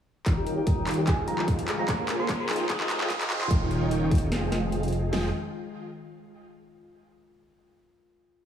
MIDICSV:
0, 0, Header, 1, 8, 480
1, 0, Start_track
1, 0, Key_signature, -4, "minor"
1, 0, Tempo, 405405
1, 313, Time_signature, 4, 2, 24, 8
1, 10005, End_track
2, 0, Start_track
2, 0, Title_t, "Synth pluck"
2, 0, Program_c, 0, 84
2, 1270, Note_on_c, 0, 80, 88
2, 1459, Note_off_c, 0, 80, 0
2, 1512, Note_on_c, 0, 82, 92
2, 1700, Note_off_c, 0, 82, 0
2, 2122, Note_on_c, 0, 82, 93
2, 2192, Note_off_c, 0, 82, 0
2, 2232, Note_on_c, 0, 82, 81
2, 2315, Note_off_c, 0, 82, 0
2, 2601, Note_on_c, 0, 84, 92
2, 2780, Note_off_c, 0, 84, 0
2, 2842, Note_on_c, 0, 84, 94
2, 3004, Note_off_c, 0, 84, 0
2, 3194, Note_on_c, 0, 87, 92
2, 3276, Note_off_c, 0, 87, 0
2, 3322, Note_on_c, 0, 87, 77
2, 3392, Note_off_c, 0, 87, 0
2, 3673, Note_on_c, 0, 87, 89
2, 3860, Note_off_c, 0, 87, 0
2, 4043, Note_on_c, 0, 84, 91
2, 4153, Note_off_c, 0, 84, 0
2, 10005, End_track
3, 0, Start_track
3, 0, Title_t, "Supersaw synth"
3, 0, Program_c, 1, 81
3, 310, Note_on_c, 1, 51, 80
3, 310, Note_on_c, 1, 63, 73
3, 310, Note_on_c, 1, 65, 72
3, 310, Note_on_c, 1, 79, 91
3, 311, Note_on_c, 1, 73, 73
3, 1227, Note_off_c, 1, 51, 0
3, 1227, Note_off_c, 1, 63, 0
3, 1227, Note_off_c, 1, 65, 0
3, 1227, Note_off_c, 1, 73, 0
3, 1227, Note_off_c, 1, 79, 0
3, 1271, Note_on_c, 1, 53, 78
3, 1271, Note_on_c, 1, 65, 73
3, 1271, Note_on_c, 1, 68, 69
3, 1271, Note_on_c, 1, 75, 67
3, 1271, Note_on_c, 1, 79, 88
3, 2187, Note_off_c, 1, 53, 0
3, 2187, Note_off_c, 1, 65, 0
3, 2187, Note_off_c, 1, 68, 0
3, 2187, Note_off_c, 1, 75, 0
3, 2187, Note_off_c, 1, 79, 0
3, 2231, Note_on_c, 1, 72, 78
3, 2232, Note_on_c, 1, 58, 83
3, 2232, Note_on_c, 1, 65, 73
3, 2232, Note_on_c, 1, 73, 72
3, 2232, Note_on_c, 1, 80, 86
3, 2908, Note_off_c, 1, 58, 0
3, 2908, Note_off_c, 1, 65, 0
3, 2908, Note_off_c, 1, 72, 0
3, 2908, Note_off_c, 1, 73, 0
3, 2908, Note_off_c, 1, 80, 0
3, 2952, Note_on_c, 1, 68, 85
3, 2952, Note_on_c, 1, 75, 88
3, 2952, Note_on_c, 1, 79, 105
3, 2953, Note_on_c, 1, 53, 94
3, 2953, Note_on_c, 1, 65, 84
3, 4108, Note_off_c, 1, 53, 0
3, 4108, Note_off_c, 1, 65, 0
3, 4108, Note_off_c, 1, 68, 0
3, 4108, Note_off_c, 1, 75, 0
3, 4108, Note_off_c, 1, 79, 0
3, 4151, Note_on_c, 1, 51, 82
3, 4151, Note_on_c, 1, 73, 74
3, 4152, Note_on_c, 1, 63, 76
3, 4152, Note_on_c, 1, 65, 71
3, 4152, Note_on_c, 1, 79, 87
3, 5067, Note_off_c, 1, 73, 0
3, 5068, Note_off_c, 1, 51, 0
3, 5068, Note_off_c, 1, 63, 0
3, 5068, Note_off_c, 1, 65, 0
3, 5068, Note_off_c, 1, 79, 0
3, 5111, Note_on_c, 1, 79, 83
3, 5112, Note_on_c, 1, 53, 77
3, 5112, Note_on_c, 1, 65, 72
3, 5112, Note_on_c, 1, 68, 72
3, 5112, Note_on_c, 1, 75, 73
3, 6028, Note_off_c, 1, 53, 0
3, 6028, Note_off_c, 1, 65, 0
3, 6028, Note_off_c, 1, 68, 0
3, 6028, Note_off_c, 1, 75, 0
3, 6028, Note_off_c, 1, 79, 0
3, 6072, Note_on_c, 1, 53, 84
3, 6072, Note_on_c, 1, 65, 77
3, 6073, Note_on_c, 1, 68, 77
3, 6073, Note_on_c, 1, 75, 76
3, 6073, Note_on_c, 1, 79, 98
3, 6254, Note_off_c, 1, 53, 0
3, 6254, Note_off_c, 1, 65, 0
3, 6254, Note_off_c, 1, 68, 0
3, 6254, Note_off_c, 1, 75, 0
3, 6254, Note_off_c, 1, 79, 0
3, 10005, End_track
4, 0, Start_track
4, 0, Title_t, "Harp"
4, 0, Program_c, 2, 46
4, 311, Note_on_c, 2, 63, 82
4, 440, Note_on_c, 2, 67, 99
4, 550, Note_on_c, 2, 70, 71
4, 676, Note_off_c, 2, 67, 0
4, 680, Note_on_c, 2, 67, 100
4, 787, Note_off_c, 2, 63, 0
4, 791, Note_on_c, 2, 63, 107
4, 916, Note_off_c, 2, 67, 0
4, 920, Note_on_c, 2, 67, 73
4, 1026, Note_off_c, 2, 63, 0
4, 1030, Note_on_c, 2, 63, 77
4, 1155, Note_off_c, 2, 67, 0
4, 1159, Note_on_c, 2, 67, 95
4, 1271, Note_on_c, 2, 68, 84
4, 1342, Note_off_c, 2, 67, 0
4, 1399, Note_on_c, 2, 65, 90
4, 1506, Note_off_c, 2, 63, 0
4, 1510, Note_on_c, 2, 63, 101
4, 1635, Note_off_c, 2, 65, 0
4, 1640, Note_on_c, 2, 65, 76
4, 1746, Note_off_c, 2, 63, 0
4, 1751, Note_on_c, 2, 63, 80
4, 1876, Note_off_c, 2, 65, 0
4, 1881, Note_on_c, 2, 65, 103
4, 1986, Note_off_c, 2, 68, 0
4, 1991, Note_on_c, 2, 68, 73
4, 2116, Note_off_c, 2, 65, 0
4, 2120, Note_on_c, 2, 65, 102
4, 2226, Note_off_c, 2, 65, 0
4, 2355, Note_off_c, 2, 68, 0
4, 2360, Note_on_c, 2, 68, 73
4, 2471, Note_on_c, 2, 65, 75
4, 2595, Note_off_c, 2, 68, 0
4, 2600, Note_on_c, 2, 68, 101
4, 2706, Note_off_c, 2, 70, 0
4, 2711, Note_on_c, 2, 70, 89
4, 2836, Note_off_c, 2, 68, 0
4, 2841, Note_on_c, 2, 68, 105
4, 2946, Note_off_c, 2, 63, 0
4, 2951, Note_on_c, 2, 63, 103
4, 3076, Note_off_c, 2, 65, 0
4, 3081, Note_on_c, 2, 65, 77
4, 3186, Note_off_c, 2, 63, 0
4, 3191, Note_on_c, 2, 63, 88
4, 3315, Note_off_c, 2, 65, 0
4, 3320, Note_on_c, 2, 65, 99
4, 3426, Note_off_c, 2, 68, 0
4, 3431, Note_on_c, 2, 68, 78
4, 3555, Note_off_c, 2, 65, 0
4, 3560, Note_on_c, 2, 65, 105
4, 3666, Note_off_c, 2, 63, 0
4, 3796, Note_off_c, 2, 65, 0
4, 3801, Note_on_c, 2, 65, 78
4, 3911, Note_on_c, 2, 63, 75
4, 4036, Note_off_c, 2, 65, 0
4, 4040, Note_on_c, 2, 65, 102
4, 5223, Note_off_c, 2, 70, 0
4, 6123, Note_off_c, 2, 68, 0
4, 7027, Note_off_c, 2, 65, 0
4, 7113, Note_off_c, 2, 63, 0
4, 10005, End_track
5, 0, Start_track
5, 0, Title_t, "Analog synth pad"
5, 0, Program_c, 3, 89
5, 312, Note_on_c, 3, 49, 80
5, 312, Note_on_c, 3, 55, 70
5, 312, Note_on_c, 3, 63, 85
5, 1262, Note_off_c, 3, 63, 0
5, 1263, Note_off_c, 3, 49, 0
5, 1263, Note_off_c, 3, 55, 0
5, 1271, Note_on_c, 3, 51, 76
5, 1271, Note_on_c, 3, 56, 76
5, 1271, Note_on_c, 3, 65, 87
5, 2222, Note_off_c, 3, 51, 0
5, 2222, Note_off_c, 3, 56, 0
5, 2222, Note_off_c, 3, 65, 0
5, 2230, Note_on_c, 3, 49, 78
5, 2230, Note_on_c, 3, 58, 73
5, 2230, Note_on_c, 3, 68, 82
5, 2944, Note_off_c, 3, 49, 0
5, 2944, Note_off_c, 3, 58, 0
5, 2944, Note_off_c, 3, 68, 0
5, 2950, Note_on_c, 3, 51, 79
5, 2950, Note_on_c, 3, 56, 72
5, 2950, Note_on_c, 3, 65, 90
5, 4139, Note_off_c, 3, 51, 0
5, 4139, Note_off_c, 3, 56, 0
5, 4139, Note_off_c, 3, 65, 0
5, 4151, Note_on_c, 3, 55, 71
5, 4152, Note_on_c, 3, 49, 76
5, 4152, Note_on_c, 3, 63, 85
5, 5102, Note_off_c, 3, 49, 0
5, 5102, Note_off_c, 3, 55, 0
5, 5103, Note_off_c, 3, 63, 0
5, 5112, Note_on_c, 3, 51, 80
5, 5112, Note_on_c, 3, 56, 71
5, 5113, Note_on_c, 3, 65, 88
5, 6059, Note_off_c, 3, 51, 0
5, 6059, Note_off_c, 3, 56, 0
5, 6059, Note_off_c, 3, 65, 0
5, 6073, Note_on_c, 3, 51, 76
5, 6073, Note_on_c, 3, 56, 65
5, 6073, Note_on_c, 3, 65, 78
5, 6296, Note_off_c, 3, 51, 0
5, 6296, Note_off_c, 3, 56, 0
5, 6296, Note_off_c, 3, 65, 0
5, 10005, End_track
6, 0, Start_track
6, 0, Title_t, "Detuned saw bass"
6, 0, Program_c, 4, 39
6, 310, Note_on_c, 4, 27, 103
6, 1249, Note_off_c, 4, 27, 0
6, 1271, Note_on_c, 4, 29, 99
6, 2209, Note_off_c, 4, 29, 0
6, 2231, Note_on_c, 4, 34, 99
6, 2930, Note_off_c, 4, 34, 0
6, 2952, Note_on_c, 4, 29, 94
6, 4130, Note_off_c, 4, 29, 0
6, 4152, Note_on_c, 4, 27, 101
6, 5112, Note_on_c, 4, 29, 97
6, 5129, Note_off_c, 4, 27, 0
6, 6050, Note_off_c, 4, 29, 0
6, 6073, Note_on_c, 4, 29, 99
6, 6296, Note_off_c, 4, 29, 0
6, 10005, End_track
7, 0, Start_track
7, 0, Title_t, "Riser"
7, 0, Program_c, 5, 103
7, 311, Note_on_c, 5, 60, 77
7, 4152, Note_off_c, 5, 60, 0
7, 10005, End_track
8, 0, Start_track
8, 0, Title_t, "Drums"
8, 311, Note_on_c, 9, 36, 90
8, 311, Note_on_c, 9, 39, 45
8, 311, Note_on_c, 9, 42, 83
8, 429, Note_off_c, 9, 36, 0
8, 429, Note_off_c, 9, 39, 0
8, 429, Note_off_c, 9, 42, 0
8, 551, Note_on_c, 9, 42, 67
8, 670, Note_off_c, 9, 42, 0
8, 790, Note_on_c, 9, 42, 80
8, 791, Note_on_c, 9, 36, 101
8, 908, Note_off_c, 9, 42, 0
8, 909, Note_off_c, 9, 36, 0
8, 1030, Note_on_c, 9, 39, 57
8, 1030, Note_on_c, 9, 42, 53
8, 1074, Note_off_c, 9, 42, 0
8, 1074, Note_on_c, 9, 42, 68
8, 1111, Note_off_c, 9, 42, 0
8, 1111, Note_on_c, 9, 42, 84
8, 1149, Note_off_c, 9, 39, 0
8, 1229, Note_off_c, 9, 42, 0
8, 1271, Note_on_c, 9, 36, 93
8, 1271, Note_on_c, 9, 39, 57
8, 1271, Note_on_c, 9, 42, 79
8, 1389, Note_off_c, 9, 36, 0
8, 1389, Note_off_c, 9, 39, 0
8, 1389, Note_off_c, 9, 42, 0
8, 1511, Note_on_c, 9, 42, 71
8, 1630, Note_off_c, 9, 42, 0
8, 1640, Note_on_c, 9, 39, 56
8, 1751, Note_on_c, 9, 36, 98
8, 1751, Note_on_c, 9, 42, 86
8, 1759, Note_off_c, 9, 39, 0
8, 1869, Note_off_c, 9, 36, 0
8, 1869, Note_off_c, 9, 42, 0
8, 1879, Note_on_c, 9, 42, 66
8, 1991, Note_off_c, 9, 42, 0
8, 1991, Note_on_c, 9, 39, 71
8, 1991, Note_on_c, 9, 42, 69
8, 2109, Note_off_c, 9, 39, 0
8, 2109, Note_off_c, 9, 42, 0
8, 2230, Note_on_c, 9, 39, 70
8, 2230, Note_on_c, 9, 42, 81
8, 2231, Note_on_c, 9, 36, 95
8, 2349, Note_off_c, 9, 39, 0
8, 2349, Note_off_c, 9, 42, 0
8, 2350, Note_off_c, 9, 36, 0
8, 2470, Note_on_c, 9, 39, 78
8, 2470, Note_on_c, 9, 42, 67
8, 2589, Note_off_c, 9, 39, 0
8, 2589, Note_off_c, 9, 42, 0
8, 2711, Note_on_c, 9, 36, 104
8, 2711, Note_on_c, 9, 39, 79
8, 2711, Note_on_c, 9, 42, 82
8, 2829, Note_off_c, 9, 36, 0
8, 2829, Note_off_c, 9, 39, 0
8, 2829, Note_off_c, 9, 42, 0
8, 2951, Note_on_c, 9, 39, 87
8, 2951, Note_on_c, 9, 42, 50
8, 2994, Note_off_c, 9, 42, 0
8, 2994, Note_on_c, 9, 42, 68
8, 3031, Note_off_c, 9, 42, 0
8, 3031, Note_on_c, 9, 42, 82
8, 3070, Note_off_c, 9, 39, 0
8, 3149, Note_off_c, 9, 42, 0
8, 3191, Note_on_c, 9, 36, 93
8, 3191, Note_on_c, 9, 39, 89
8, 3191, Note_on_c, 9, 42, 84
8, 3310, Note_off_c, 9, 36, 0
8, 3310, Note_off_c, 9, 39, 0
8, 3310, Note_off_c, 9, 42, 0
8, 3320, Note_on_c, 9, 39, 82
8, 3431, Note_off_c, 9, 39, 0
8, 3431, Note_on_c, 9, 39, 98
8, 3431, Note_on_c, 9, 42, 72
8, 3550, Note_off_c, 9, 39, 0
8, 3550, Note_off_c, 9, 42, 0
8, 3561, Note_on_c, 9, 39, 89
8, 3671, Note_on_c, 9, 36, 97
8, 3672, Note_off_c, 9, 39, 0
8, 3672, Note_on_c, 9, 39, 104
8, 3672, Note_on_c, 9, 42, 86
8, 3790, Note_off_c, 9, 36, 0
8, 3790, Note_off_c, 9, 39, 0
8, 3790, Note_off_c, 9, 42, 0
8, 3801, Note_on_c, 9, 39, 90
8, 3801, Note_on_c, 9, 42, 66
8, 3912, Note_off_c, 9, 39, 0
8, 3912, Note_off_c, 9, 42, 0
8, 3912, Note_on_c, 9, 39, 108
8, 3912, Note_on_c, 9, 42, 71
8, 4030, Note_off_c, 9, 39, 0
8, 4030, Note_off_c, 9, 42, 0
8, 4041, Note_on_c, 9, 39, 99
8, 4151, Note_on_c, 9, 36, 111
8, 4152, Note_on_c, 9, 42, 77
8, 4160, Note_off_c, 9, 39, 0
8, 4270, Note_off_c, 9, 36, 0
8, 4271, Note_off_c, 9, 42, 0
8, 4392, Note_on_c, 9, 42, 65
8, 4510, Note_off_c, 9, 42, 0
8, 4632, Note_on_c, 9, 42, 79
8, 4750, Note_off_c, 9, 42, 0
8, 4871, Note_on_c, 9, 36, 106
8, 4872, Note_on_c, 9, 42, 52
8, 4915, Note_off_c, 9, 42, 0
8, 4915, Note_on_c, 9, 42, 66
8, 4952, Note_off_c, 9, 42, 0
8, 4952, Note_on_c, 9, 42, 82
8, 4990, Note_off_c, 9, 36, 0
8, 5070, Note_off_c, 9, 42, 0
8, 5112, Note_on_c, 9, 38, 123
8, 5112, Note_on_c, 9, 42, 85
8, 5231, Note_off_c, 9, 38, 0
8, 5231, Note_off_c, 9, 42, 0
8, 5353, Note_on_c, 9, 38, 62
8, 5353, Note_on_c, 9, 42, 69
8, 5471, Note_off_c, 9, 38, 0
8, 5471, Note_off_c, 9, 42, 0
8, 5592, Note_on_c, 9, 42, 84
8, 5711, Note_off_c, 9, 42, 0
8, 5722, Note_on_c, 9, 42, 50
8, 5777, Note_off_c, 9, 42, 0
8, 5777, Note_on_c, 9, 42, 65
8, 5832, Note_off_c, 9, 42, 0
8, 5832, Note_on_c, 9, 42, 69
8, 5950, Note_off_c, 9, 42, 0
8, 6072, Note_on_c, 9, 38, 105
8, 6072, Note_on_c, 9, 46, 86
8, 6190, Note_off_c, 9, 38, 0
8, 6190, Note_off_c, 9, 46, 0
8, 10005, End_track
0, 0, End_of_file